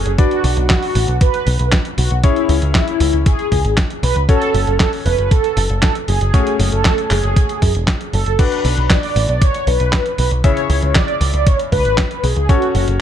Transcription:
Already playing: C#4 F#4 A4 C#5
0.06 F#1 G#4, closed hi-hat
0.18 D4 F#4 B4 D5, kick, closed hi-hat
0.31 closed hi-hat
0.44 B1, open hi-hat
0.57 B1, closed hi-hat
0.70 F#4, kick, snare, clap, closed hi-hat
0.83 open hi-hat
0.95 A1, open hi-hat
1.08 B1, closed hi-hat
1.21 B4, kick, closed hi-hat
1.34 closed hi-hat
1.47 B1, open hi-hat
1.59 B1, closed hi-hat
1.72 kick, snare, clap, closed hi-hat
1.85 closed hi-hat
1.98 B1 F#4, open hi-hat
2.11 B1 F#4, closed hi-hat
2.23 C#4 E4 G#4 C#5, kick, closed hi-hat
2.36 closed hi-hat
2.49 C#2, open hi-hat
2.62 C#2, closed hi-hat
2.75 E4, kick, snare, clap, closed hi-hat
2.88 closed hi-hat
3.00 C#2, open hi-hat
3.13 C#2, closed hi-hat
3.26 G#4, kick, closed hi-hat
3.39 closed hi-hat
3.52 C#2, kick, open hi-hat
3.65 G#1, closed hi-hat
3.77 kick, snare, clap, closed hi-hat
3.90 closed hi-hat
4.03 B1 B4, open hi-hat
4.16 C#2 B4, closed hi-hat
4.29 C#4 F#4 A4 C#5, kick, closed hi-hat
4.42 closed hi-hat
4.54 F#1, open hi-hat
4.67 F#1, closed hi-hat
4.80 A4, kick, snare, clap, closed hi-hat
4.93 open hi-hat
5.05 E1 B4, open hi-hat
5.18 F#1 B4, closed hi-hat
5.31 A4, kick, closed hi-hat
5.44 closed hi-hat
5.57 F#1, open hi-hat
5.70 F#1, closed hi-hat
5.82 A4, kick, snare, clap, closed hi-hat
5.95 closed hi-hat
6.08 F#1 G#4, open hi-hat
6.21 F#1 G#4, closed hi-hat
6.34 A3 C#4 F#4 C#5, kick, closed hi-hat
6.47 closed hi-hat
6.59 F#1, open hi-hat
6.72 F#1 A4, closed hi-hat
6.85 kick, snare, clap, closed hi-hat
6.98 closed hi-hat
7.11 F#1 G#4, clap, open hi-hat
7.24 F#1, closed hi-hat
7.36 kick, closed hi-hat
7.49 closed hi-hat
7.62 F#2, kick, open hi-hat
7.75 E1, closed hi-hat
7.88 kick, snare, clap, closed hi-hat
8.01 closed hi-hat
8.13 F#1 A4, open hi-hat
8.26 F#1, closed hi-hat
8.39 D4 F#4 B4 D5, kick, closed hi-hat, crash
8.52 closed hi-hat
8.65 B1, open hi-hat
8.77 B1, closed hi-hat
8.90 D5, kick, snare, clap, closed hi-hat
9.03 open hi-hat
9.16 A1, open hi-hat
9.29 B1 D5, closed hi-hat
9.41 C#5, kick, closed hi-hat
9.54 closed hi-hat
9.67 B1 B4, open hi-hat
9.80 B1, closed hi-hat
9.93 kick, snare, clap, closed hi-hat
10.06 closed hi-hat
10.18 B1 B4, open hi-hat
10.31 B1, closed hi-hat
10.44 C#3 E4 G#4 C#5 E5, kick, closed hi-hat
10.57 closed hi-hat
10.70 C#2, open hi-hat
10.82 C#2, closed hi-hat
10.95 D5, kick, snare, clap, closed hi-hat
11.08 closed hi-hat
11.21 C#2, open hi-hat
11.34 C#2 D5, closed hi-hat
11.46 C#5, kick, closed hi-hat
11.59 closed hi-hat
11.72 C#2 B4, kick, open hi-hat
11.85 G#1, closed hi-hat
11.98 kick, snare, clap, closed hi-hat
12.11 closed hi-hat
12.23 B1 G#4, open hi-hat
12.36 C#2 G#4, closed hi-hat
12.49 C#4 F#4 A4 C#5, kick, closed hi-hat
12.62 closed hi-hat
12.75 F#1, open hi-hat
12.88 F#1, closed hi-hat

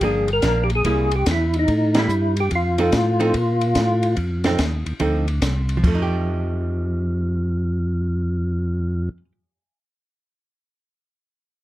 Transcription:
0.01 G1 F3 A#3 D4 G#4, kick, ride
0.28 ride
0.33 A#4
0.42 A#1 F3 A#3 D4, kick, snare, hi-hat pedal, ride
0.64 G4
0.70 ride
0.75 G#4
0.85 C2 G3 A#3 E4, kick, ride
1.11 ride
1.16 G4
1.26 E2, kick, snare, hi-hat pedal, ride
1.31 E4
1.54 ride
1.59 D#4
1.68 A2, kick, ride
1.95 G3 A#3 E4, snare, ride
1.99 E4
2.08 G2, hi-hat pedal
2.37 G4, ride
2.51 F2, kick, ride
2.55 F4
2.78 F3 C4 D#4 A4, ride
2.92 A2, kick, snare, hi-hat pedal, ride
3.20 F3 C4 D#4 A4, ride
3.34 A#2, kick, ride
3.61 ride
3.75 A2, kick, snare, hi-hat pedal, ride
4.03 ride
4.17 F2, kick, ride
4.44 F3 C4 D#4 A4, snare, ride
4.58 D#2, kick, snare, hi-hat pedal, ride
4.86 D#2, ride
5.00 D2 F3 C4 D#4 A4, kick, ride
5.28 ride
5.42 C2, kick, snare, hi-hat pedal, ride
5.69 ride
5.77 F3
5.83 F2 A3, kick, crash
5.95 D#4
6.02 G4

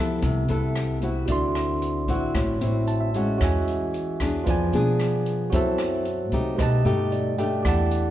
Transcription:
Already playing: C2 F3 B3 E4 G4 A4 B4 E5 A5
0.22 C2 C3, kick, closed hi-hat
0.48 C2 B3 E4 A4, closed hi-hat
0.76 cross-stick, closed hi-hat
1.02 C4 E4 F#4, closed hi-hat
1.26 D2 D3 F#4 D5 E5, kick, closed hi-hat
1.32 C6
1.55 cross-stick, closed hi-hat
1.82 closed hi-hat
2.08 A1 C4 E4 F#4, kick, closed hi-hat
2.34 A1 A2, kick, cross-stick, closed hi-hat
2.61 A1 C4 E4 F#4, closed hi-hat
2.87 A5, closed hi-hat
3.00 E5
3.14 G#3 C#4 F#4, closed hi-hat
3.38 E2 E3 F#4 C#5, kick, cross-stick, closed hi-hat
3.42 E5 G#5
3.68 closed hi-hat
3.94 closed hi-hat
4.20 E2 B3 D4 G#4, kick, cross-stick, closed hi-hat
4.44 F2 F3 F4 B4, kick, closed hi-hat
4.48 D5 G#5
4.72 B2 B3 D4 G#4, closed hi-hat
5.00 cross-stick, closed hi-hat
5.26 closed hi-hat
5.50 F#2 F#3 C4 E4 F#4 A4 C5, kick, closed hi-hat
5.54 E5 A5
5.78 cross-stick, closed hi-hat
6.05 closed hi-hat
6.32 C3 A3 D#4 G4, kick, closed hi-hat
6.56 B1 B2 G4 B4, kick, cross-stick, closed hi-hat
6.60 D#5 A5
6.85 G2 A3 D#4 G4, closed hi-hat
7.12 D5, closed hi-hat
7.38 A3 D4 G4 G5, closed hi-hat
7.63 E2 E3 G4 D5, kick, cross-stick, closed hi-hat
7.67 F#5 A5
7.91 closed hi-hat

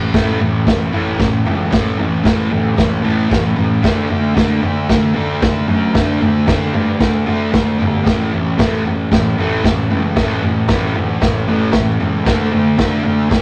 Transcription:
Already playing: A1 A2 E3
0.12 A1 A2 E3 A3, kick, snare, floor tom
0.40 A1 A2 E3, floor tom
0.67 A1 A2 E3, kick, snare, floor tom
0.92 A1 A2 E3 A3, floor tom
1.19 A1 A2 E3, kick, snare, floor tom
1.46 C#2 A2 E3, floor tom
1.71 A1 A2 E3 A3, kick, snare, floor tom
1.98 A1 A2 E3, floor tom
2.24 A1 A2 E3 A3, kick, snare, floor tom
2.50 D2 A2 E3, floor tom
2.77 A1 A2 E3, kick, snare, floor tom
3.03 A1 A2 E3 A3, floor tom
3.30 A1 A2 E3, kick, snare, floor tom
3.56 A1 A2 E3, floor tom
3.82 D2 D3 A3 D4, kick, snare, floor tom
4.08 D2 D3 A3, floor tom
4.35 D2 D3 A3 D4, kick, snare, floor tom
4.62 D2 D3 A3, floor tom
4.89 D2 D3 A3, kick, snare, floor tom
5.14 D2 D3 A3 D4, floor tom
5.42 D2 D3 A3, kick, snare, floor tom
5.68 F#2 D3 A3, floor tom
5.94 D2 D3 A3 D4, kick, snare, floor tom
6.21 D2 D3 A3, floor tom
6.47 D2 D3 A3 D4, kick, snare, floor tom
6.74 G2 D3 A3, floor tom
7.00 D2 D3 A3, kick, snare, floor tom
7.26 D2 D3 A3 D4, floor tom
7.52 D2 D3 A3, kick, snare, floor tom
7.79 G1 D3 A3, floor tom
8.04 A1 A2 E3 A3, kick, snare, floor tom
8.33 A1 A2 E3, floor tom
8.58 A1 A2 E3 A3, kick, snare, floor tom
8.84 A1 A2 E3, floor tom
9.11 A1 A2 E3, kick, snare, floor tom
9.37 A1 A2 E3 A3, floor tom
9.64 A1 A2 E3, kick, snare, floor tom
9.90 C#2 A2 E3, floor tom
10.16 A1 A2 E3 A3, kick, snare, floor tom
10.42 A1 A2 E3, floor tom
10.68 A1 A2 E3, kick, snare, floor tom
10.72 A3
10.95 D2 A2 E3, floor tom
11.21 A1 A2 E3, kick, snare, floor tom
11.47 A1 A2 E3 A3, floor tom
11.72 A1 A2 E3, kick, snare, floor tom
12.00 C#2 A2 E3, floor tom
12.26 D2 D3 A3 D4, kick, snare, floor tom
12.52 D2 D3 A3, floor tom
12.78 D2 D3 A3 D4, kick, snare, floor tom
13.03 D2 D3 A3, floor tom
13.29 D2 D3 A3, kick, snare, floor tom

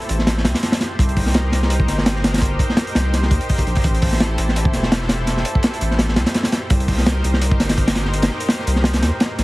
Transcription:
Already playing: E4 G4 A4 C5
0.02 closed hi-hat
0.09 A1, closed hi-hat
0.19 snare
0.27 snare, closed hi-hat
0.38 snare
0.45 C2, snare, closed hi-hat
0.54 snare, closed hi-hat
0.63 snare, closed hi-hat
0.72 snare, closed hi-hat
0.80 snare, closed hi-hat
0.98 C2 D#4 A#4, kick, closed hi-hat
1.09 closed hi-hat
1.17 kick, open hi-hat
1.26 snare
1.34 snare, closed hi-hat
1.52 C2, snare, closed hi-hat
1.63 snare
1.70 closed hi-hat
1.80 kick
1.88 G1, snare, closed hi-hat
1.98 snare
2.06 snare, closed hi-hat
2.16 snare
2.24 snare, closed hi-hat
2.34 snare, closed hi-hat
2.38 snare, closed hi-hat
2.42 kick, closed hi-hat
2.59 kick, closed hi-hat
2.69 snare
2.77 snare, closed hi-hat
2.87 closed hi-hat
2.95 C2, snare, closed hi-hat
3.13 snare, closed hi-hat
3.23 snare
3.31 D#2, kick, closed hi-hat
3.41 closed hi-hat
3.49 kick, open hi-hat
3.58 kick, closed hi-hat
3.67 A#1, closed hi-hat
3.75 kick, open hi-hat
3.84 A1 E4 A4, kick, closed hi-hat
3.94 closed hi-hat
4.02 kick, open hi-hat
4.12 snare
4.20 snare, closed hi-hat
4.38 A1, closed hi-hat
4.49 snare
4.56 closed hi-hat
4.65 kick
4.73 E1, snare, closed hi-hat
4.83 snare
4.92 snare, closed hi-hat
5.02 snare
5.09 snare, closed hi-hat
5.27 snare, closed hi-hat
5.37 snare
5.45 closed hi-hat
5.55 kick
5.63 snare, closed hi-hat
5.74 closed hi-hat
5.81 A1, closed hi-hat
5.91 snare
5.99 snare, closed hi-hat
6.09 snare
6.16 C2, snare, closed hi-hat
6.26 snare, closed hi-hat
6.34 snare, closed hi-hat
6.43 snare, closed hi-hat
6.52 snare, closed hi-hat
6.70 C2 D#4 G4 A#4 C5, kick, closed hi-hat
6.80 closed hi-hat
6.88 kick, open hi-hat
6.98 snare
7.06 snare, closed hi-hat
7.24 C2, closed hi-hat
7.34 snare
7.42 closed hi-hat
7.51 kick
7.60 G1, snare, closed hi-hat
7.69 snare, closed hi-hat
7.77 kick, closed hi-hat
7.88 snare, closed hi-hat
7.95 snare, closed hi-hat
8.05 snare
8.13 closed hi-hat
8.22 snare, closed hi-hat
8.31 snare
8.40 closed hi-hat
8.49 snare, closed hi-hat
8.59 snare
8.67 C2, closed hi-hat
8.76 snare
8.84 snare, closed hi-hat
8.93 snare, closed hi-hat
9.02 D#2, snare, closed hi-hat
9.20 snare, closed hi-hat
9.38 A#1, snare, closed hi-hat

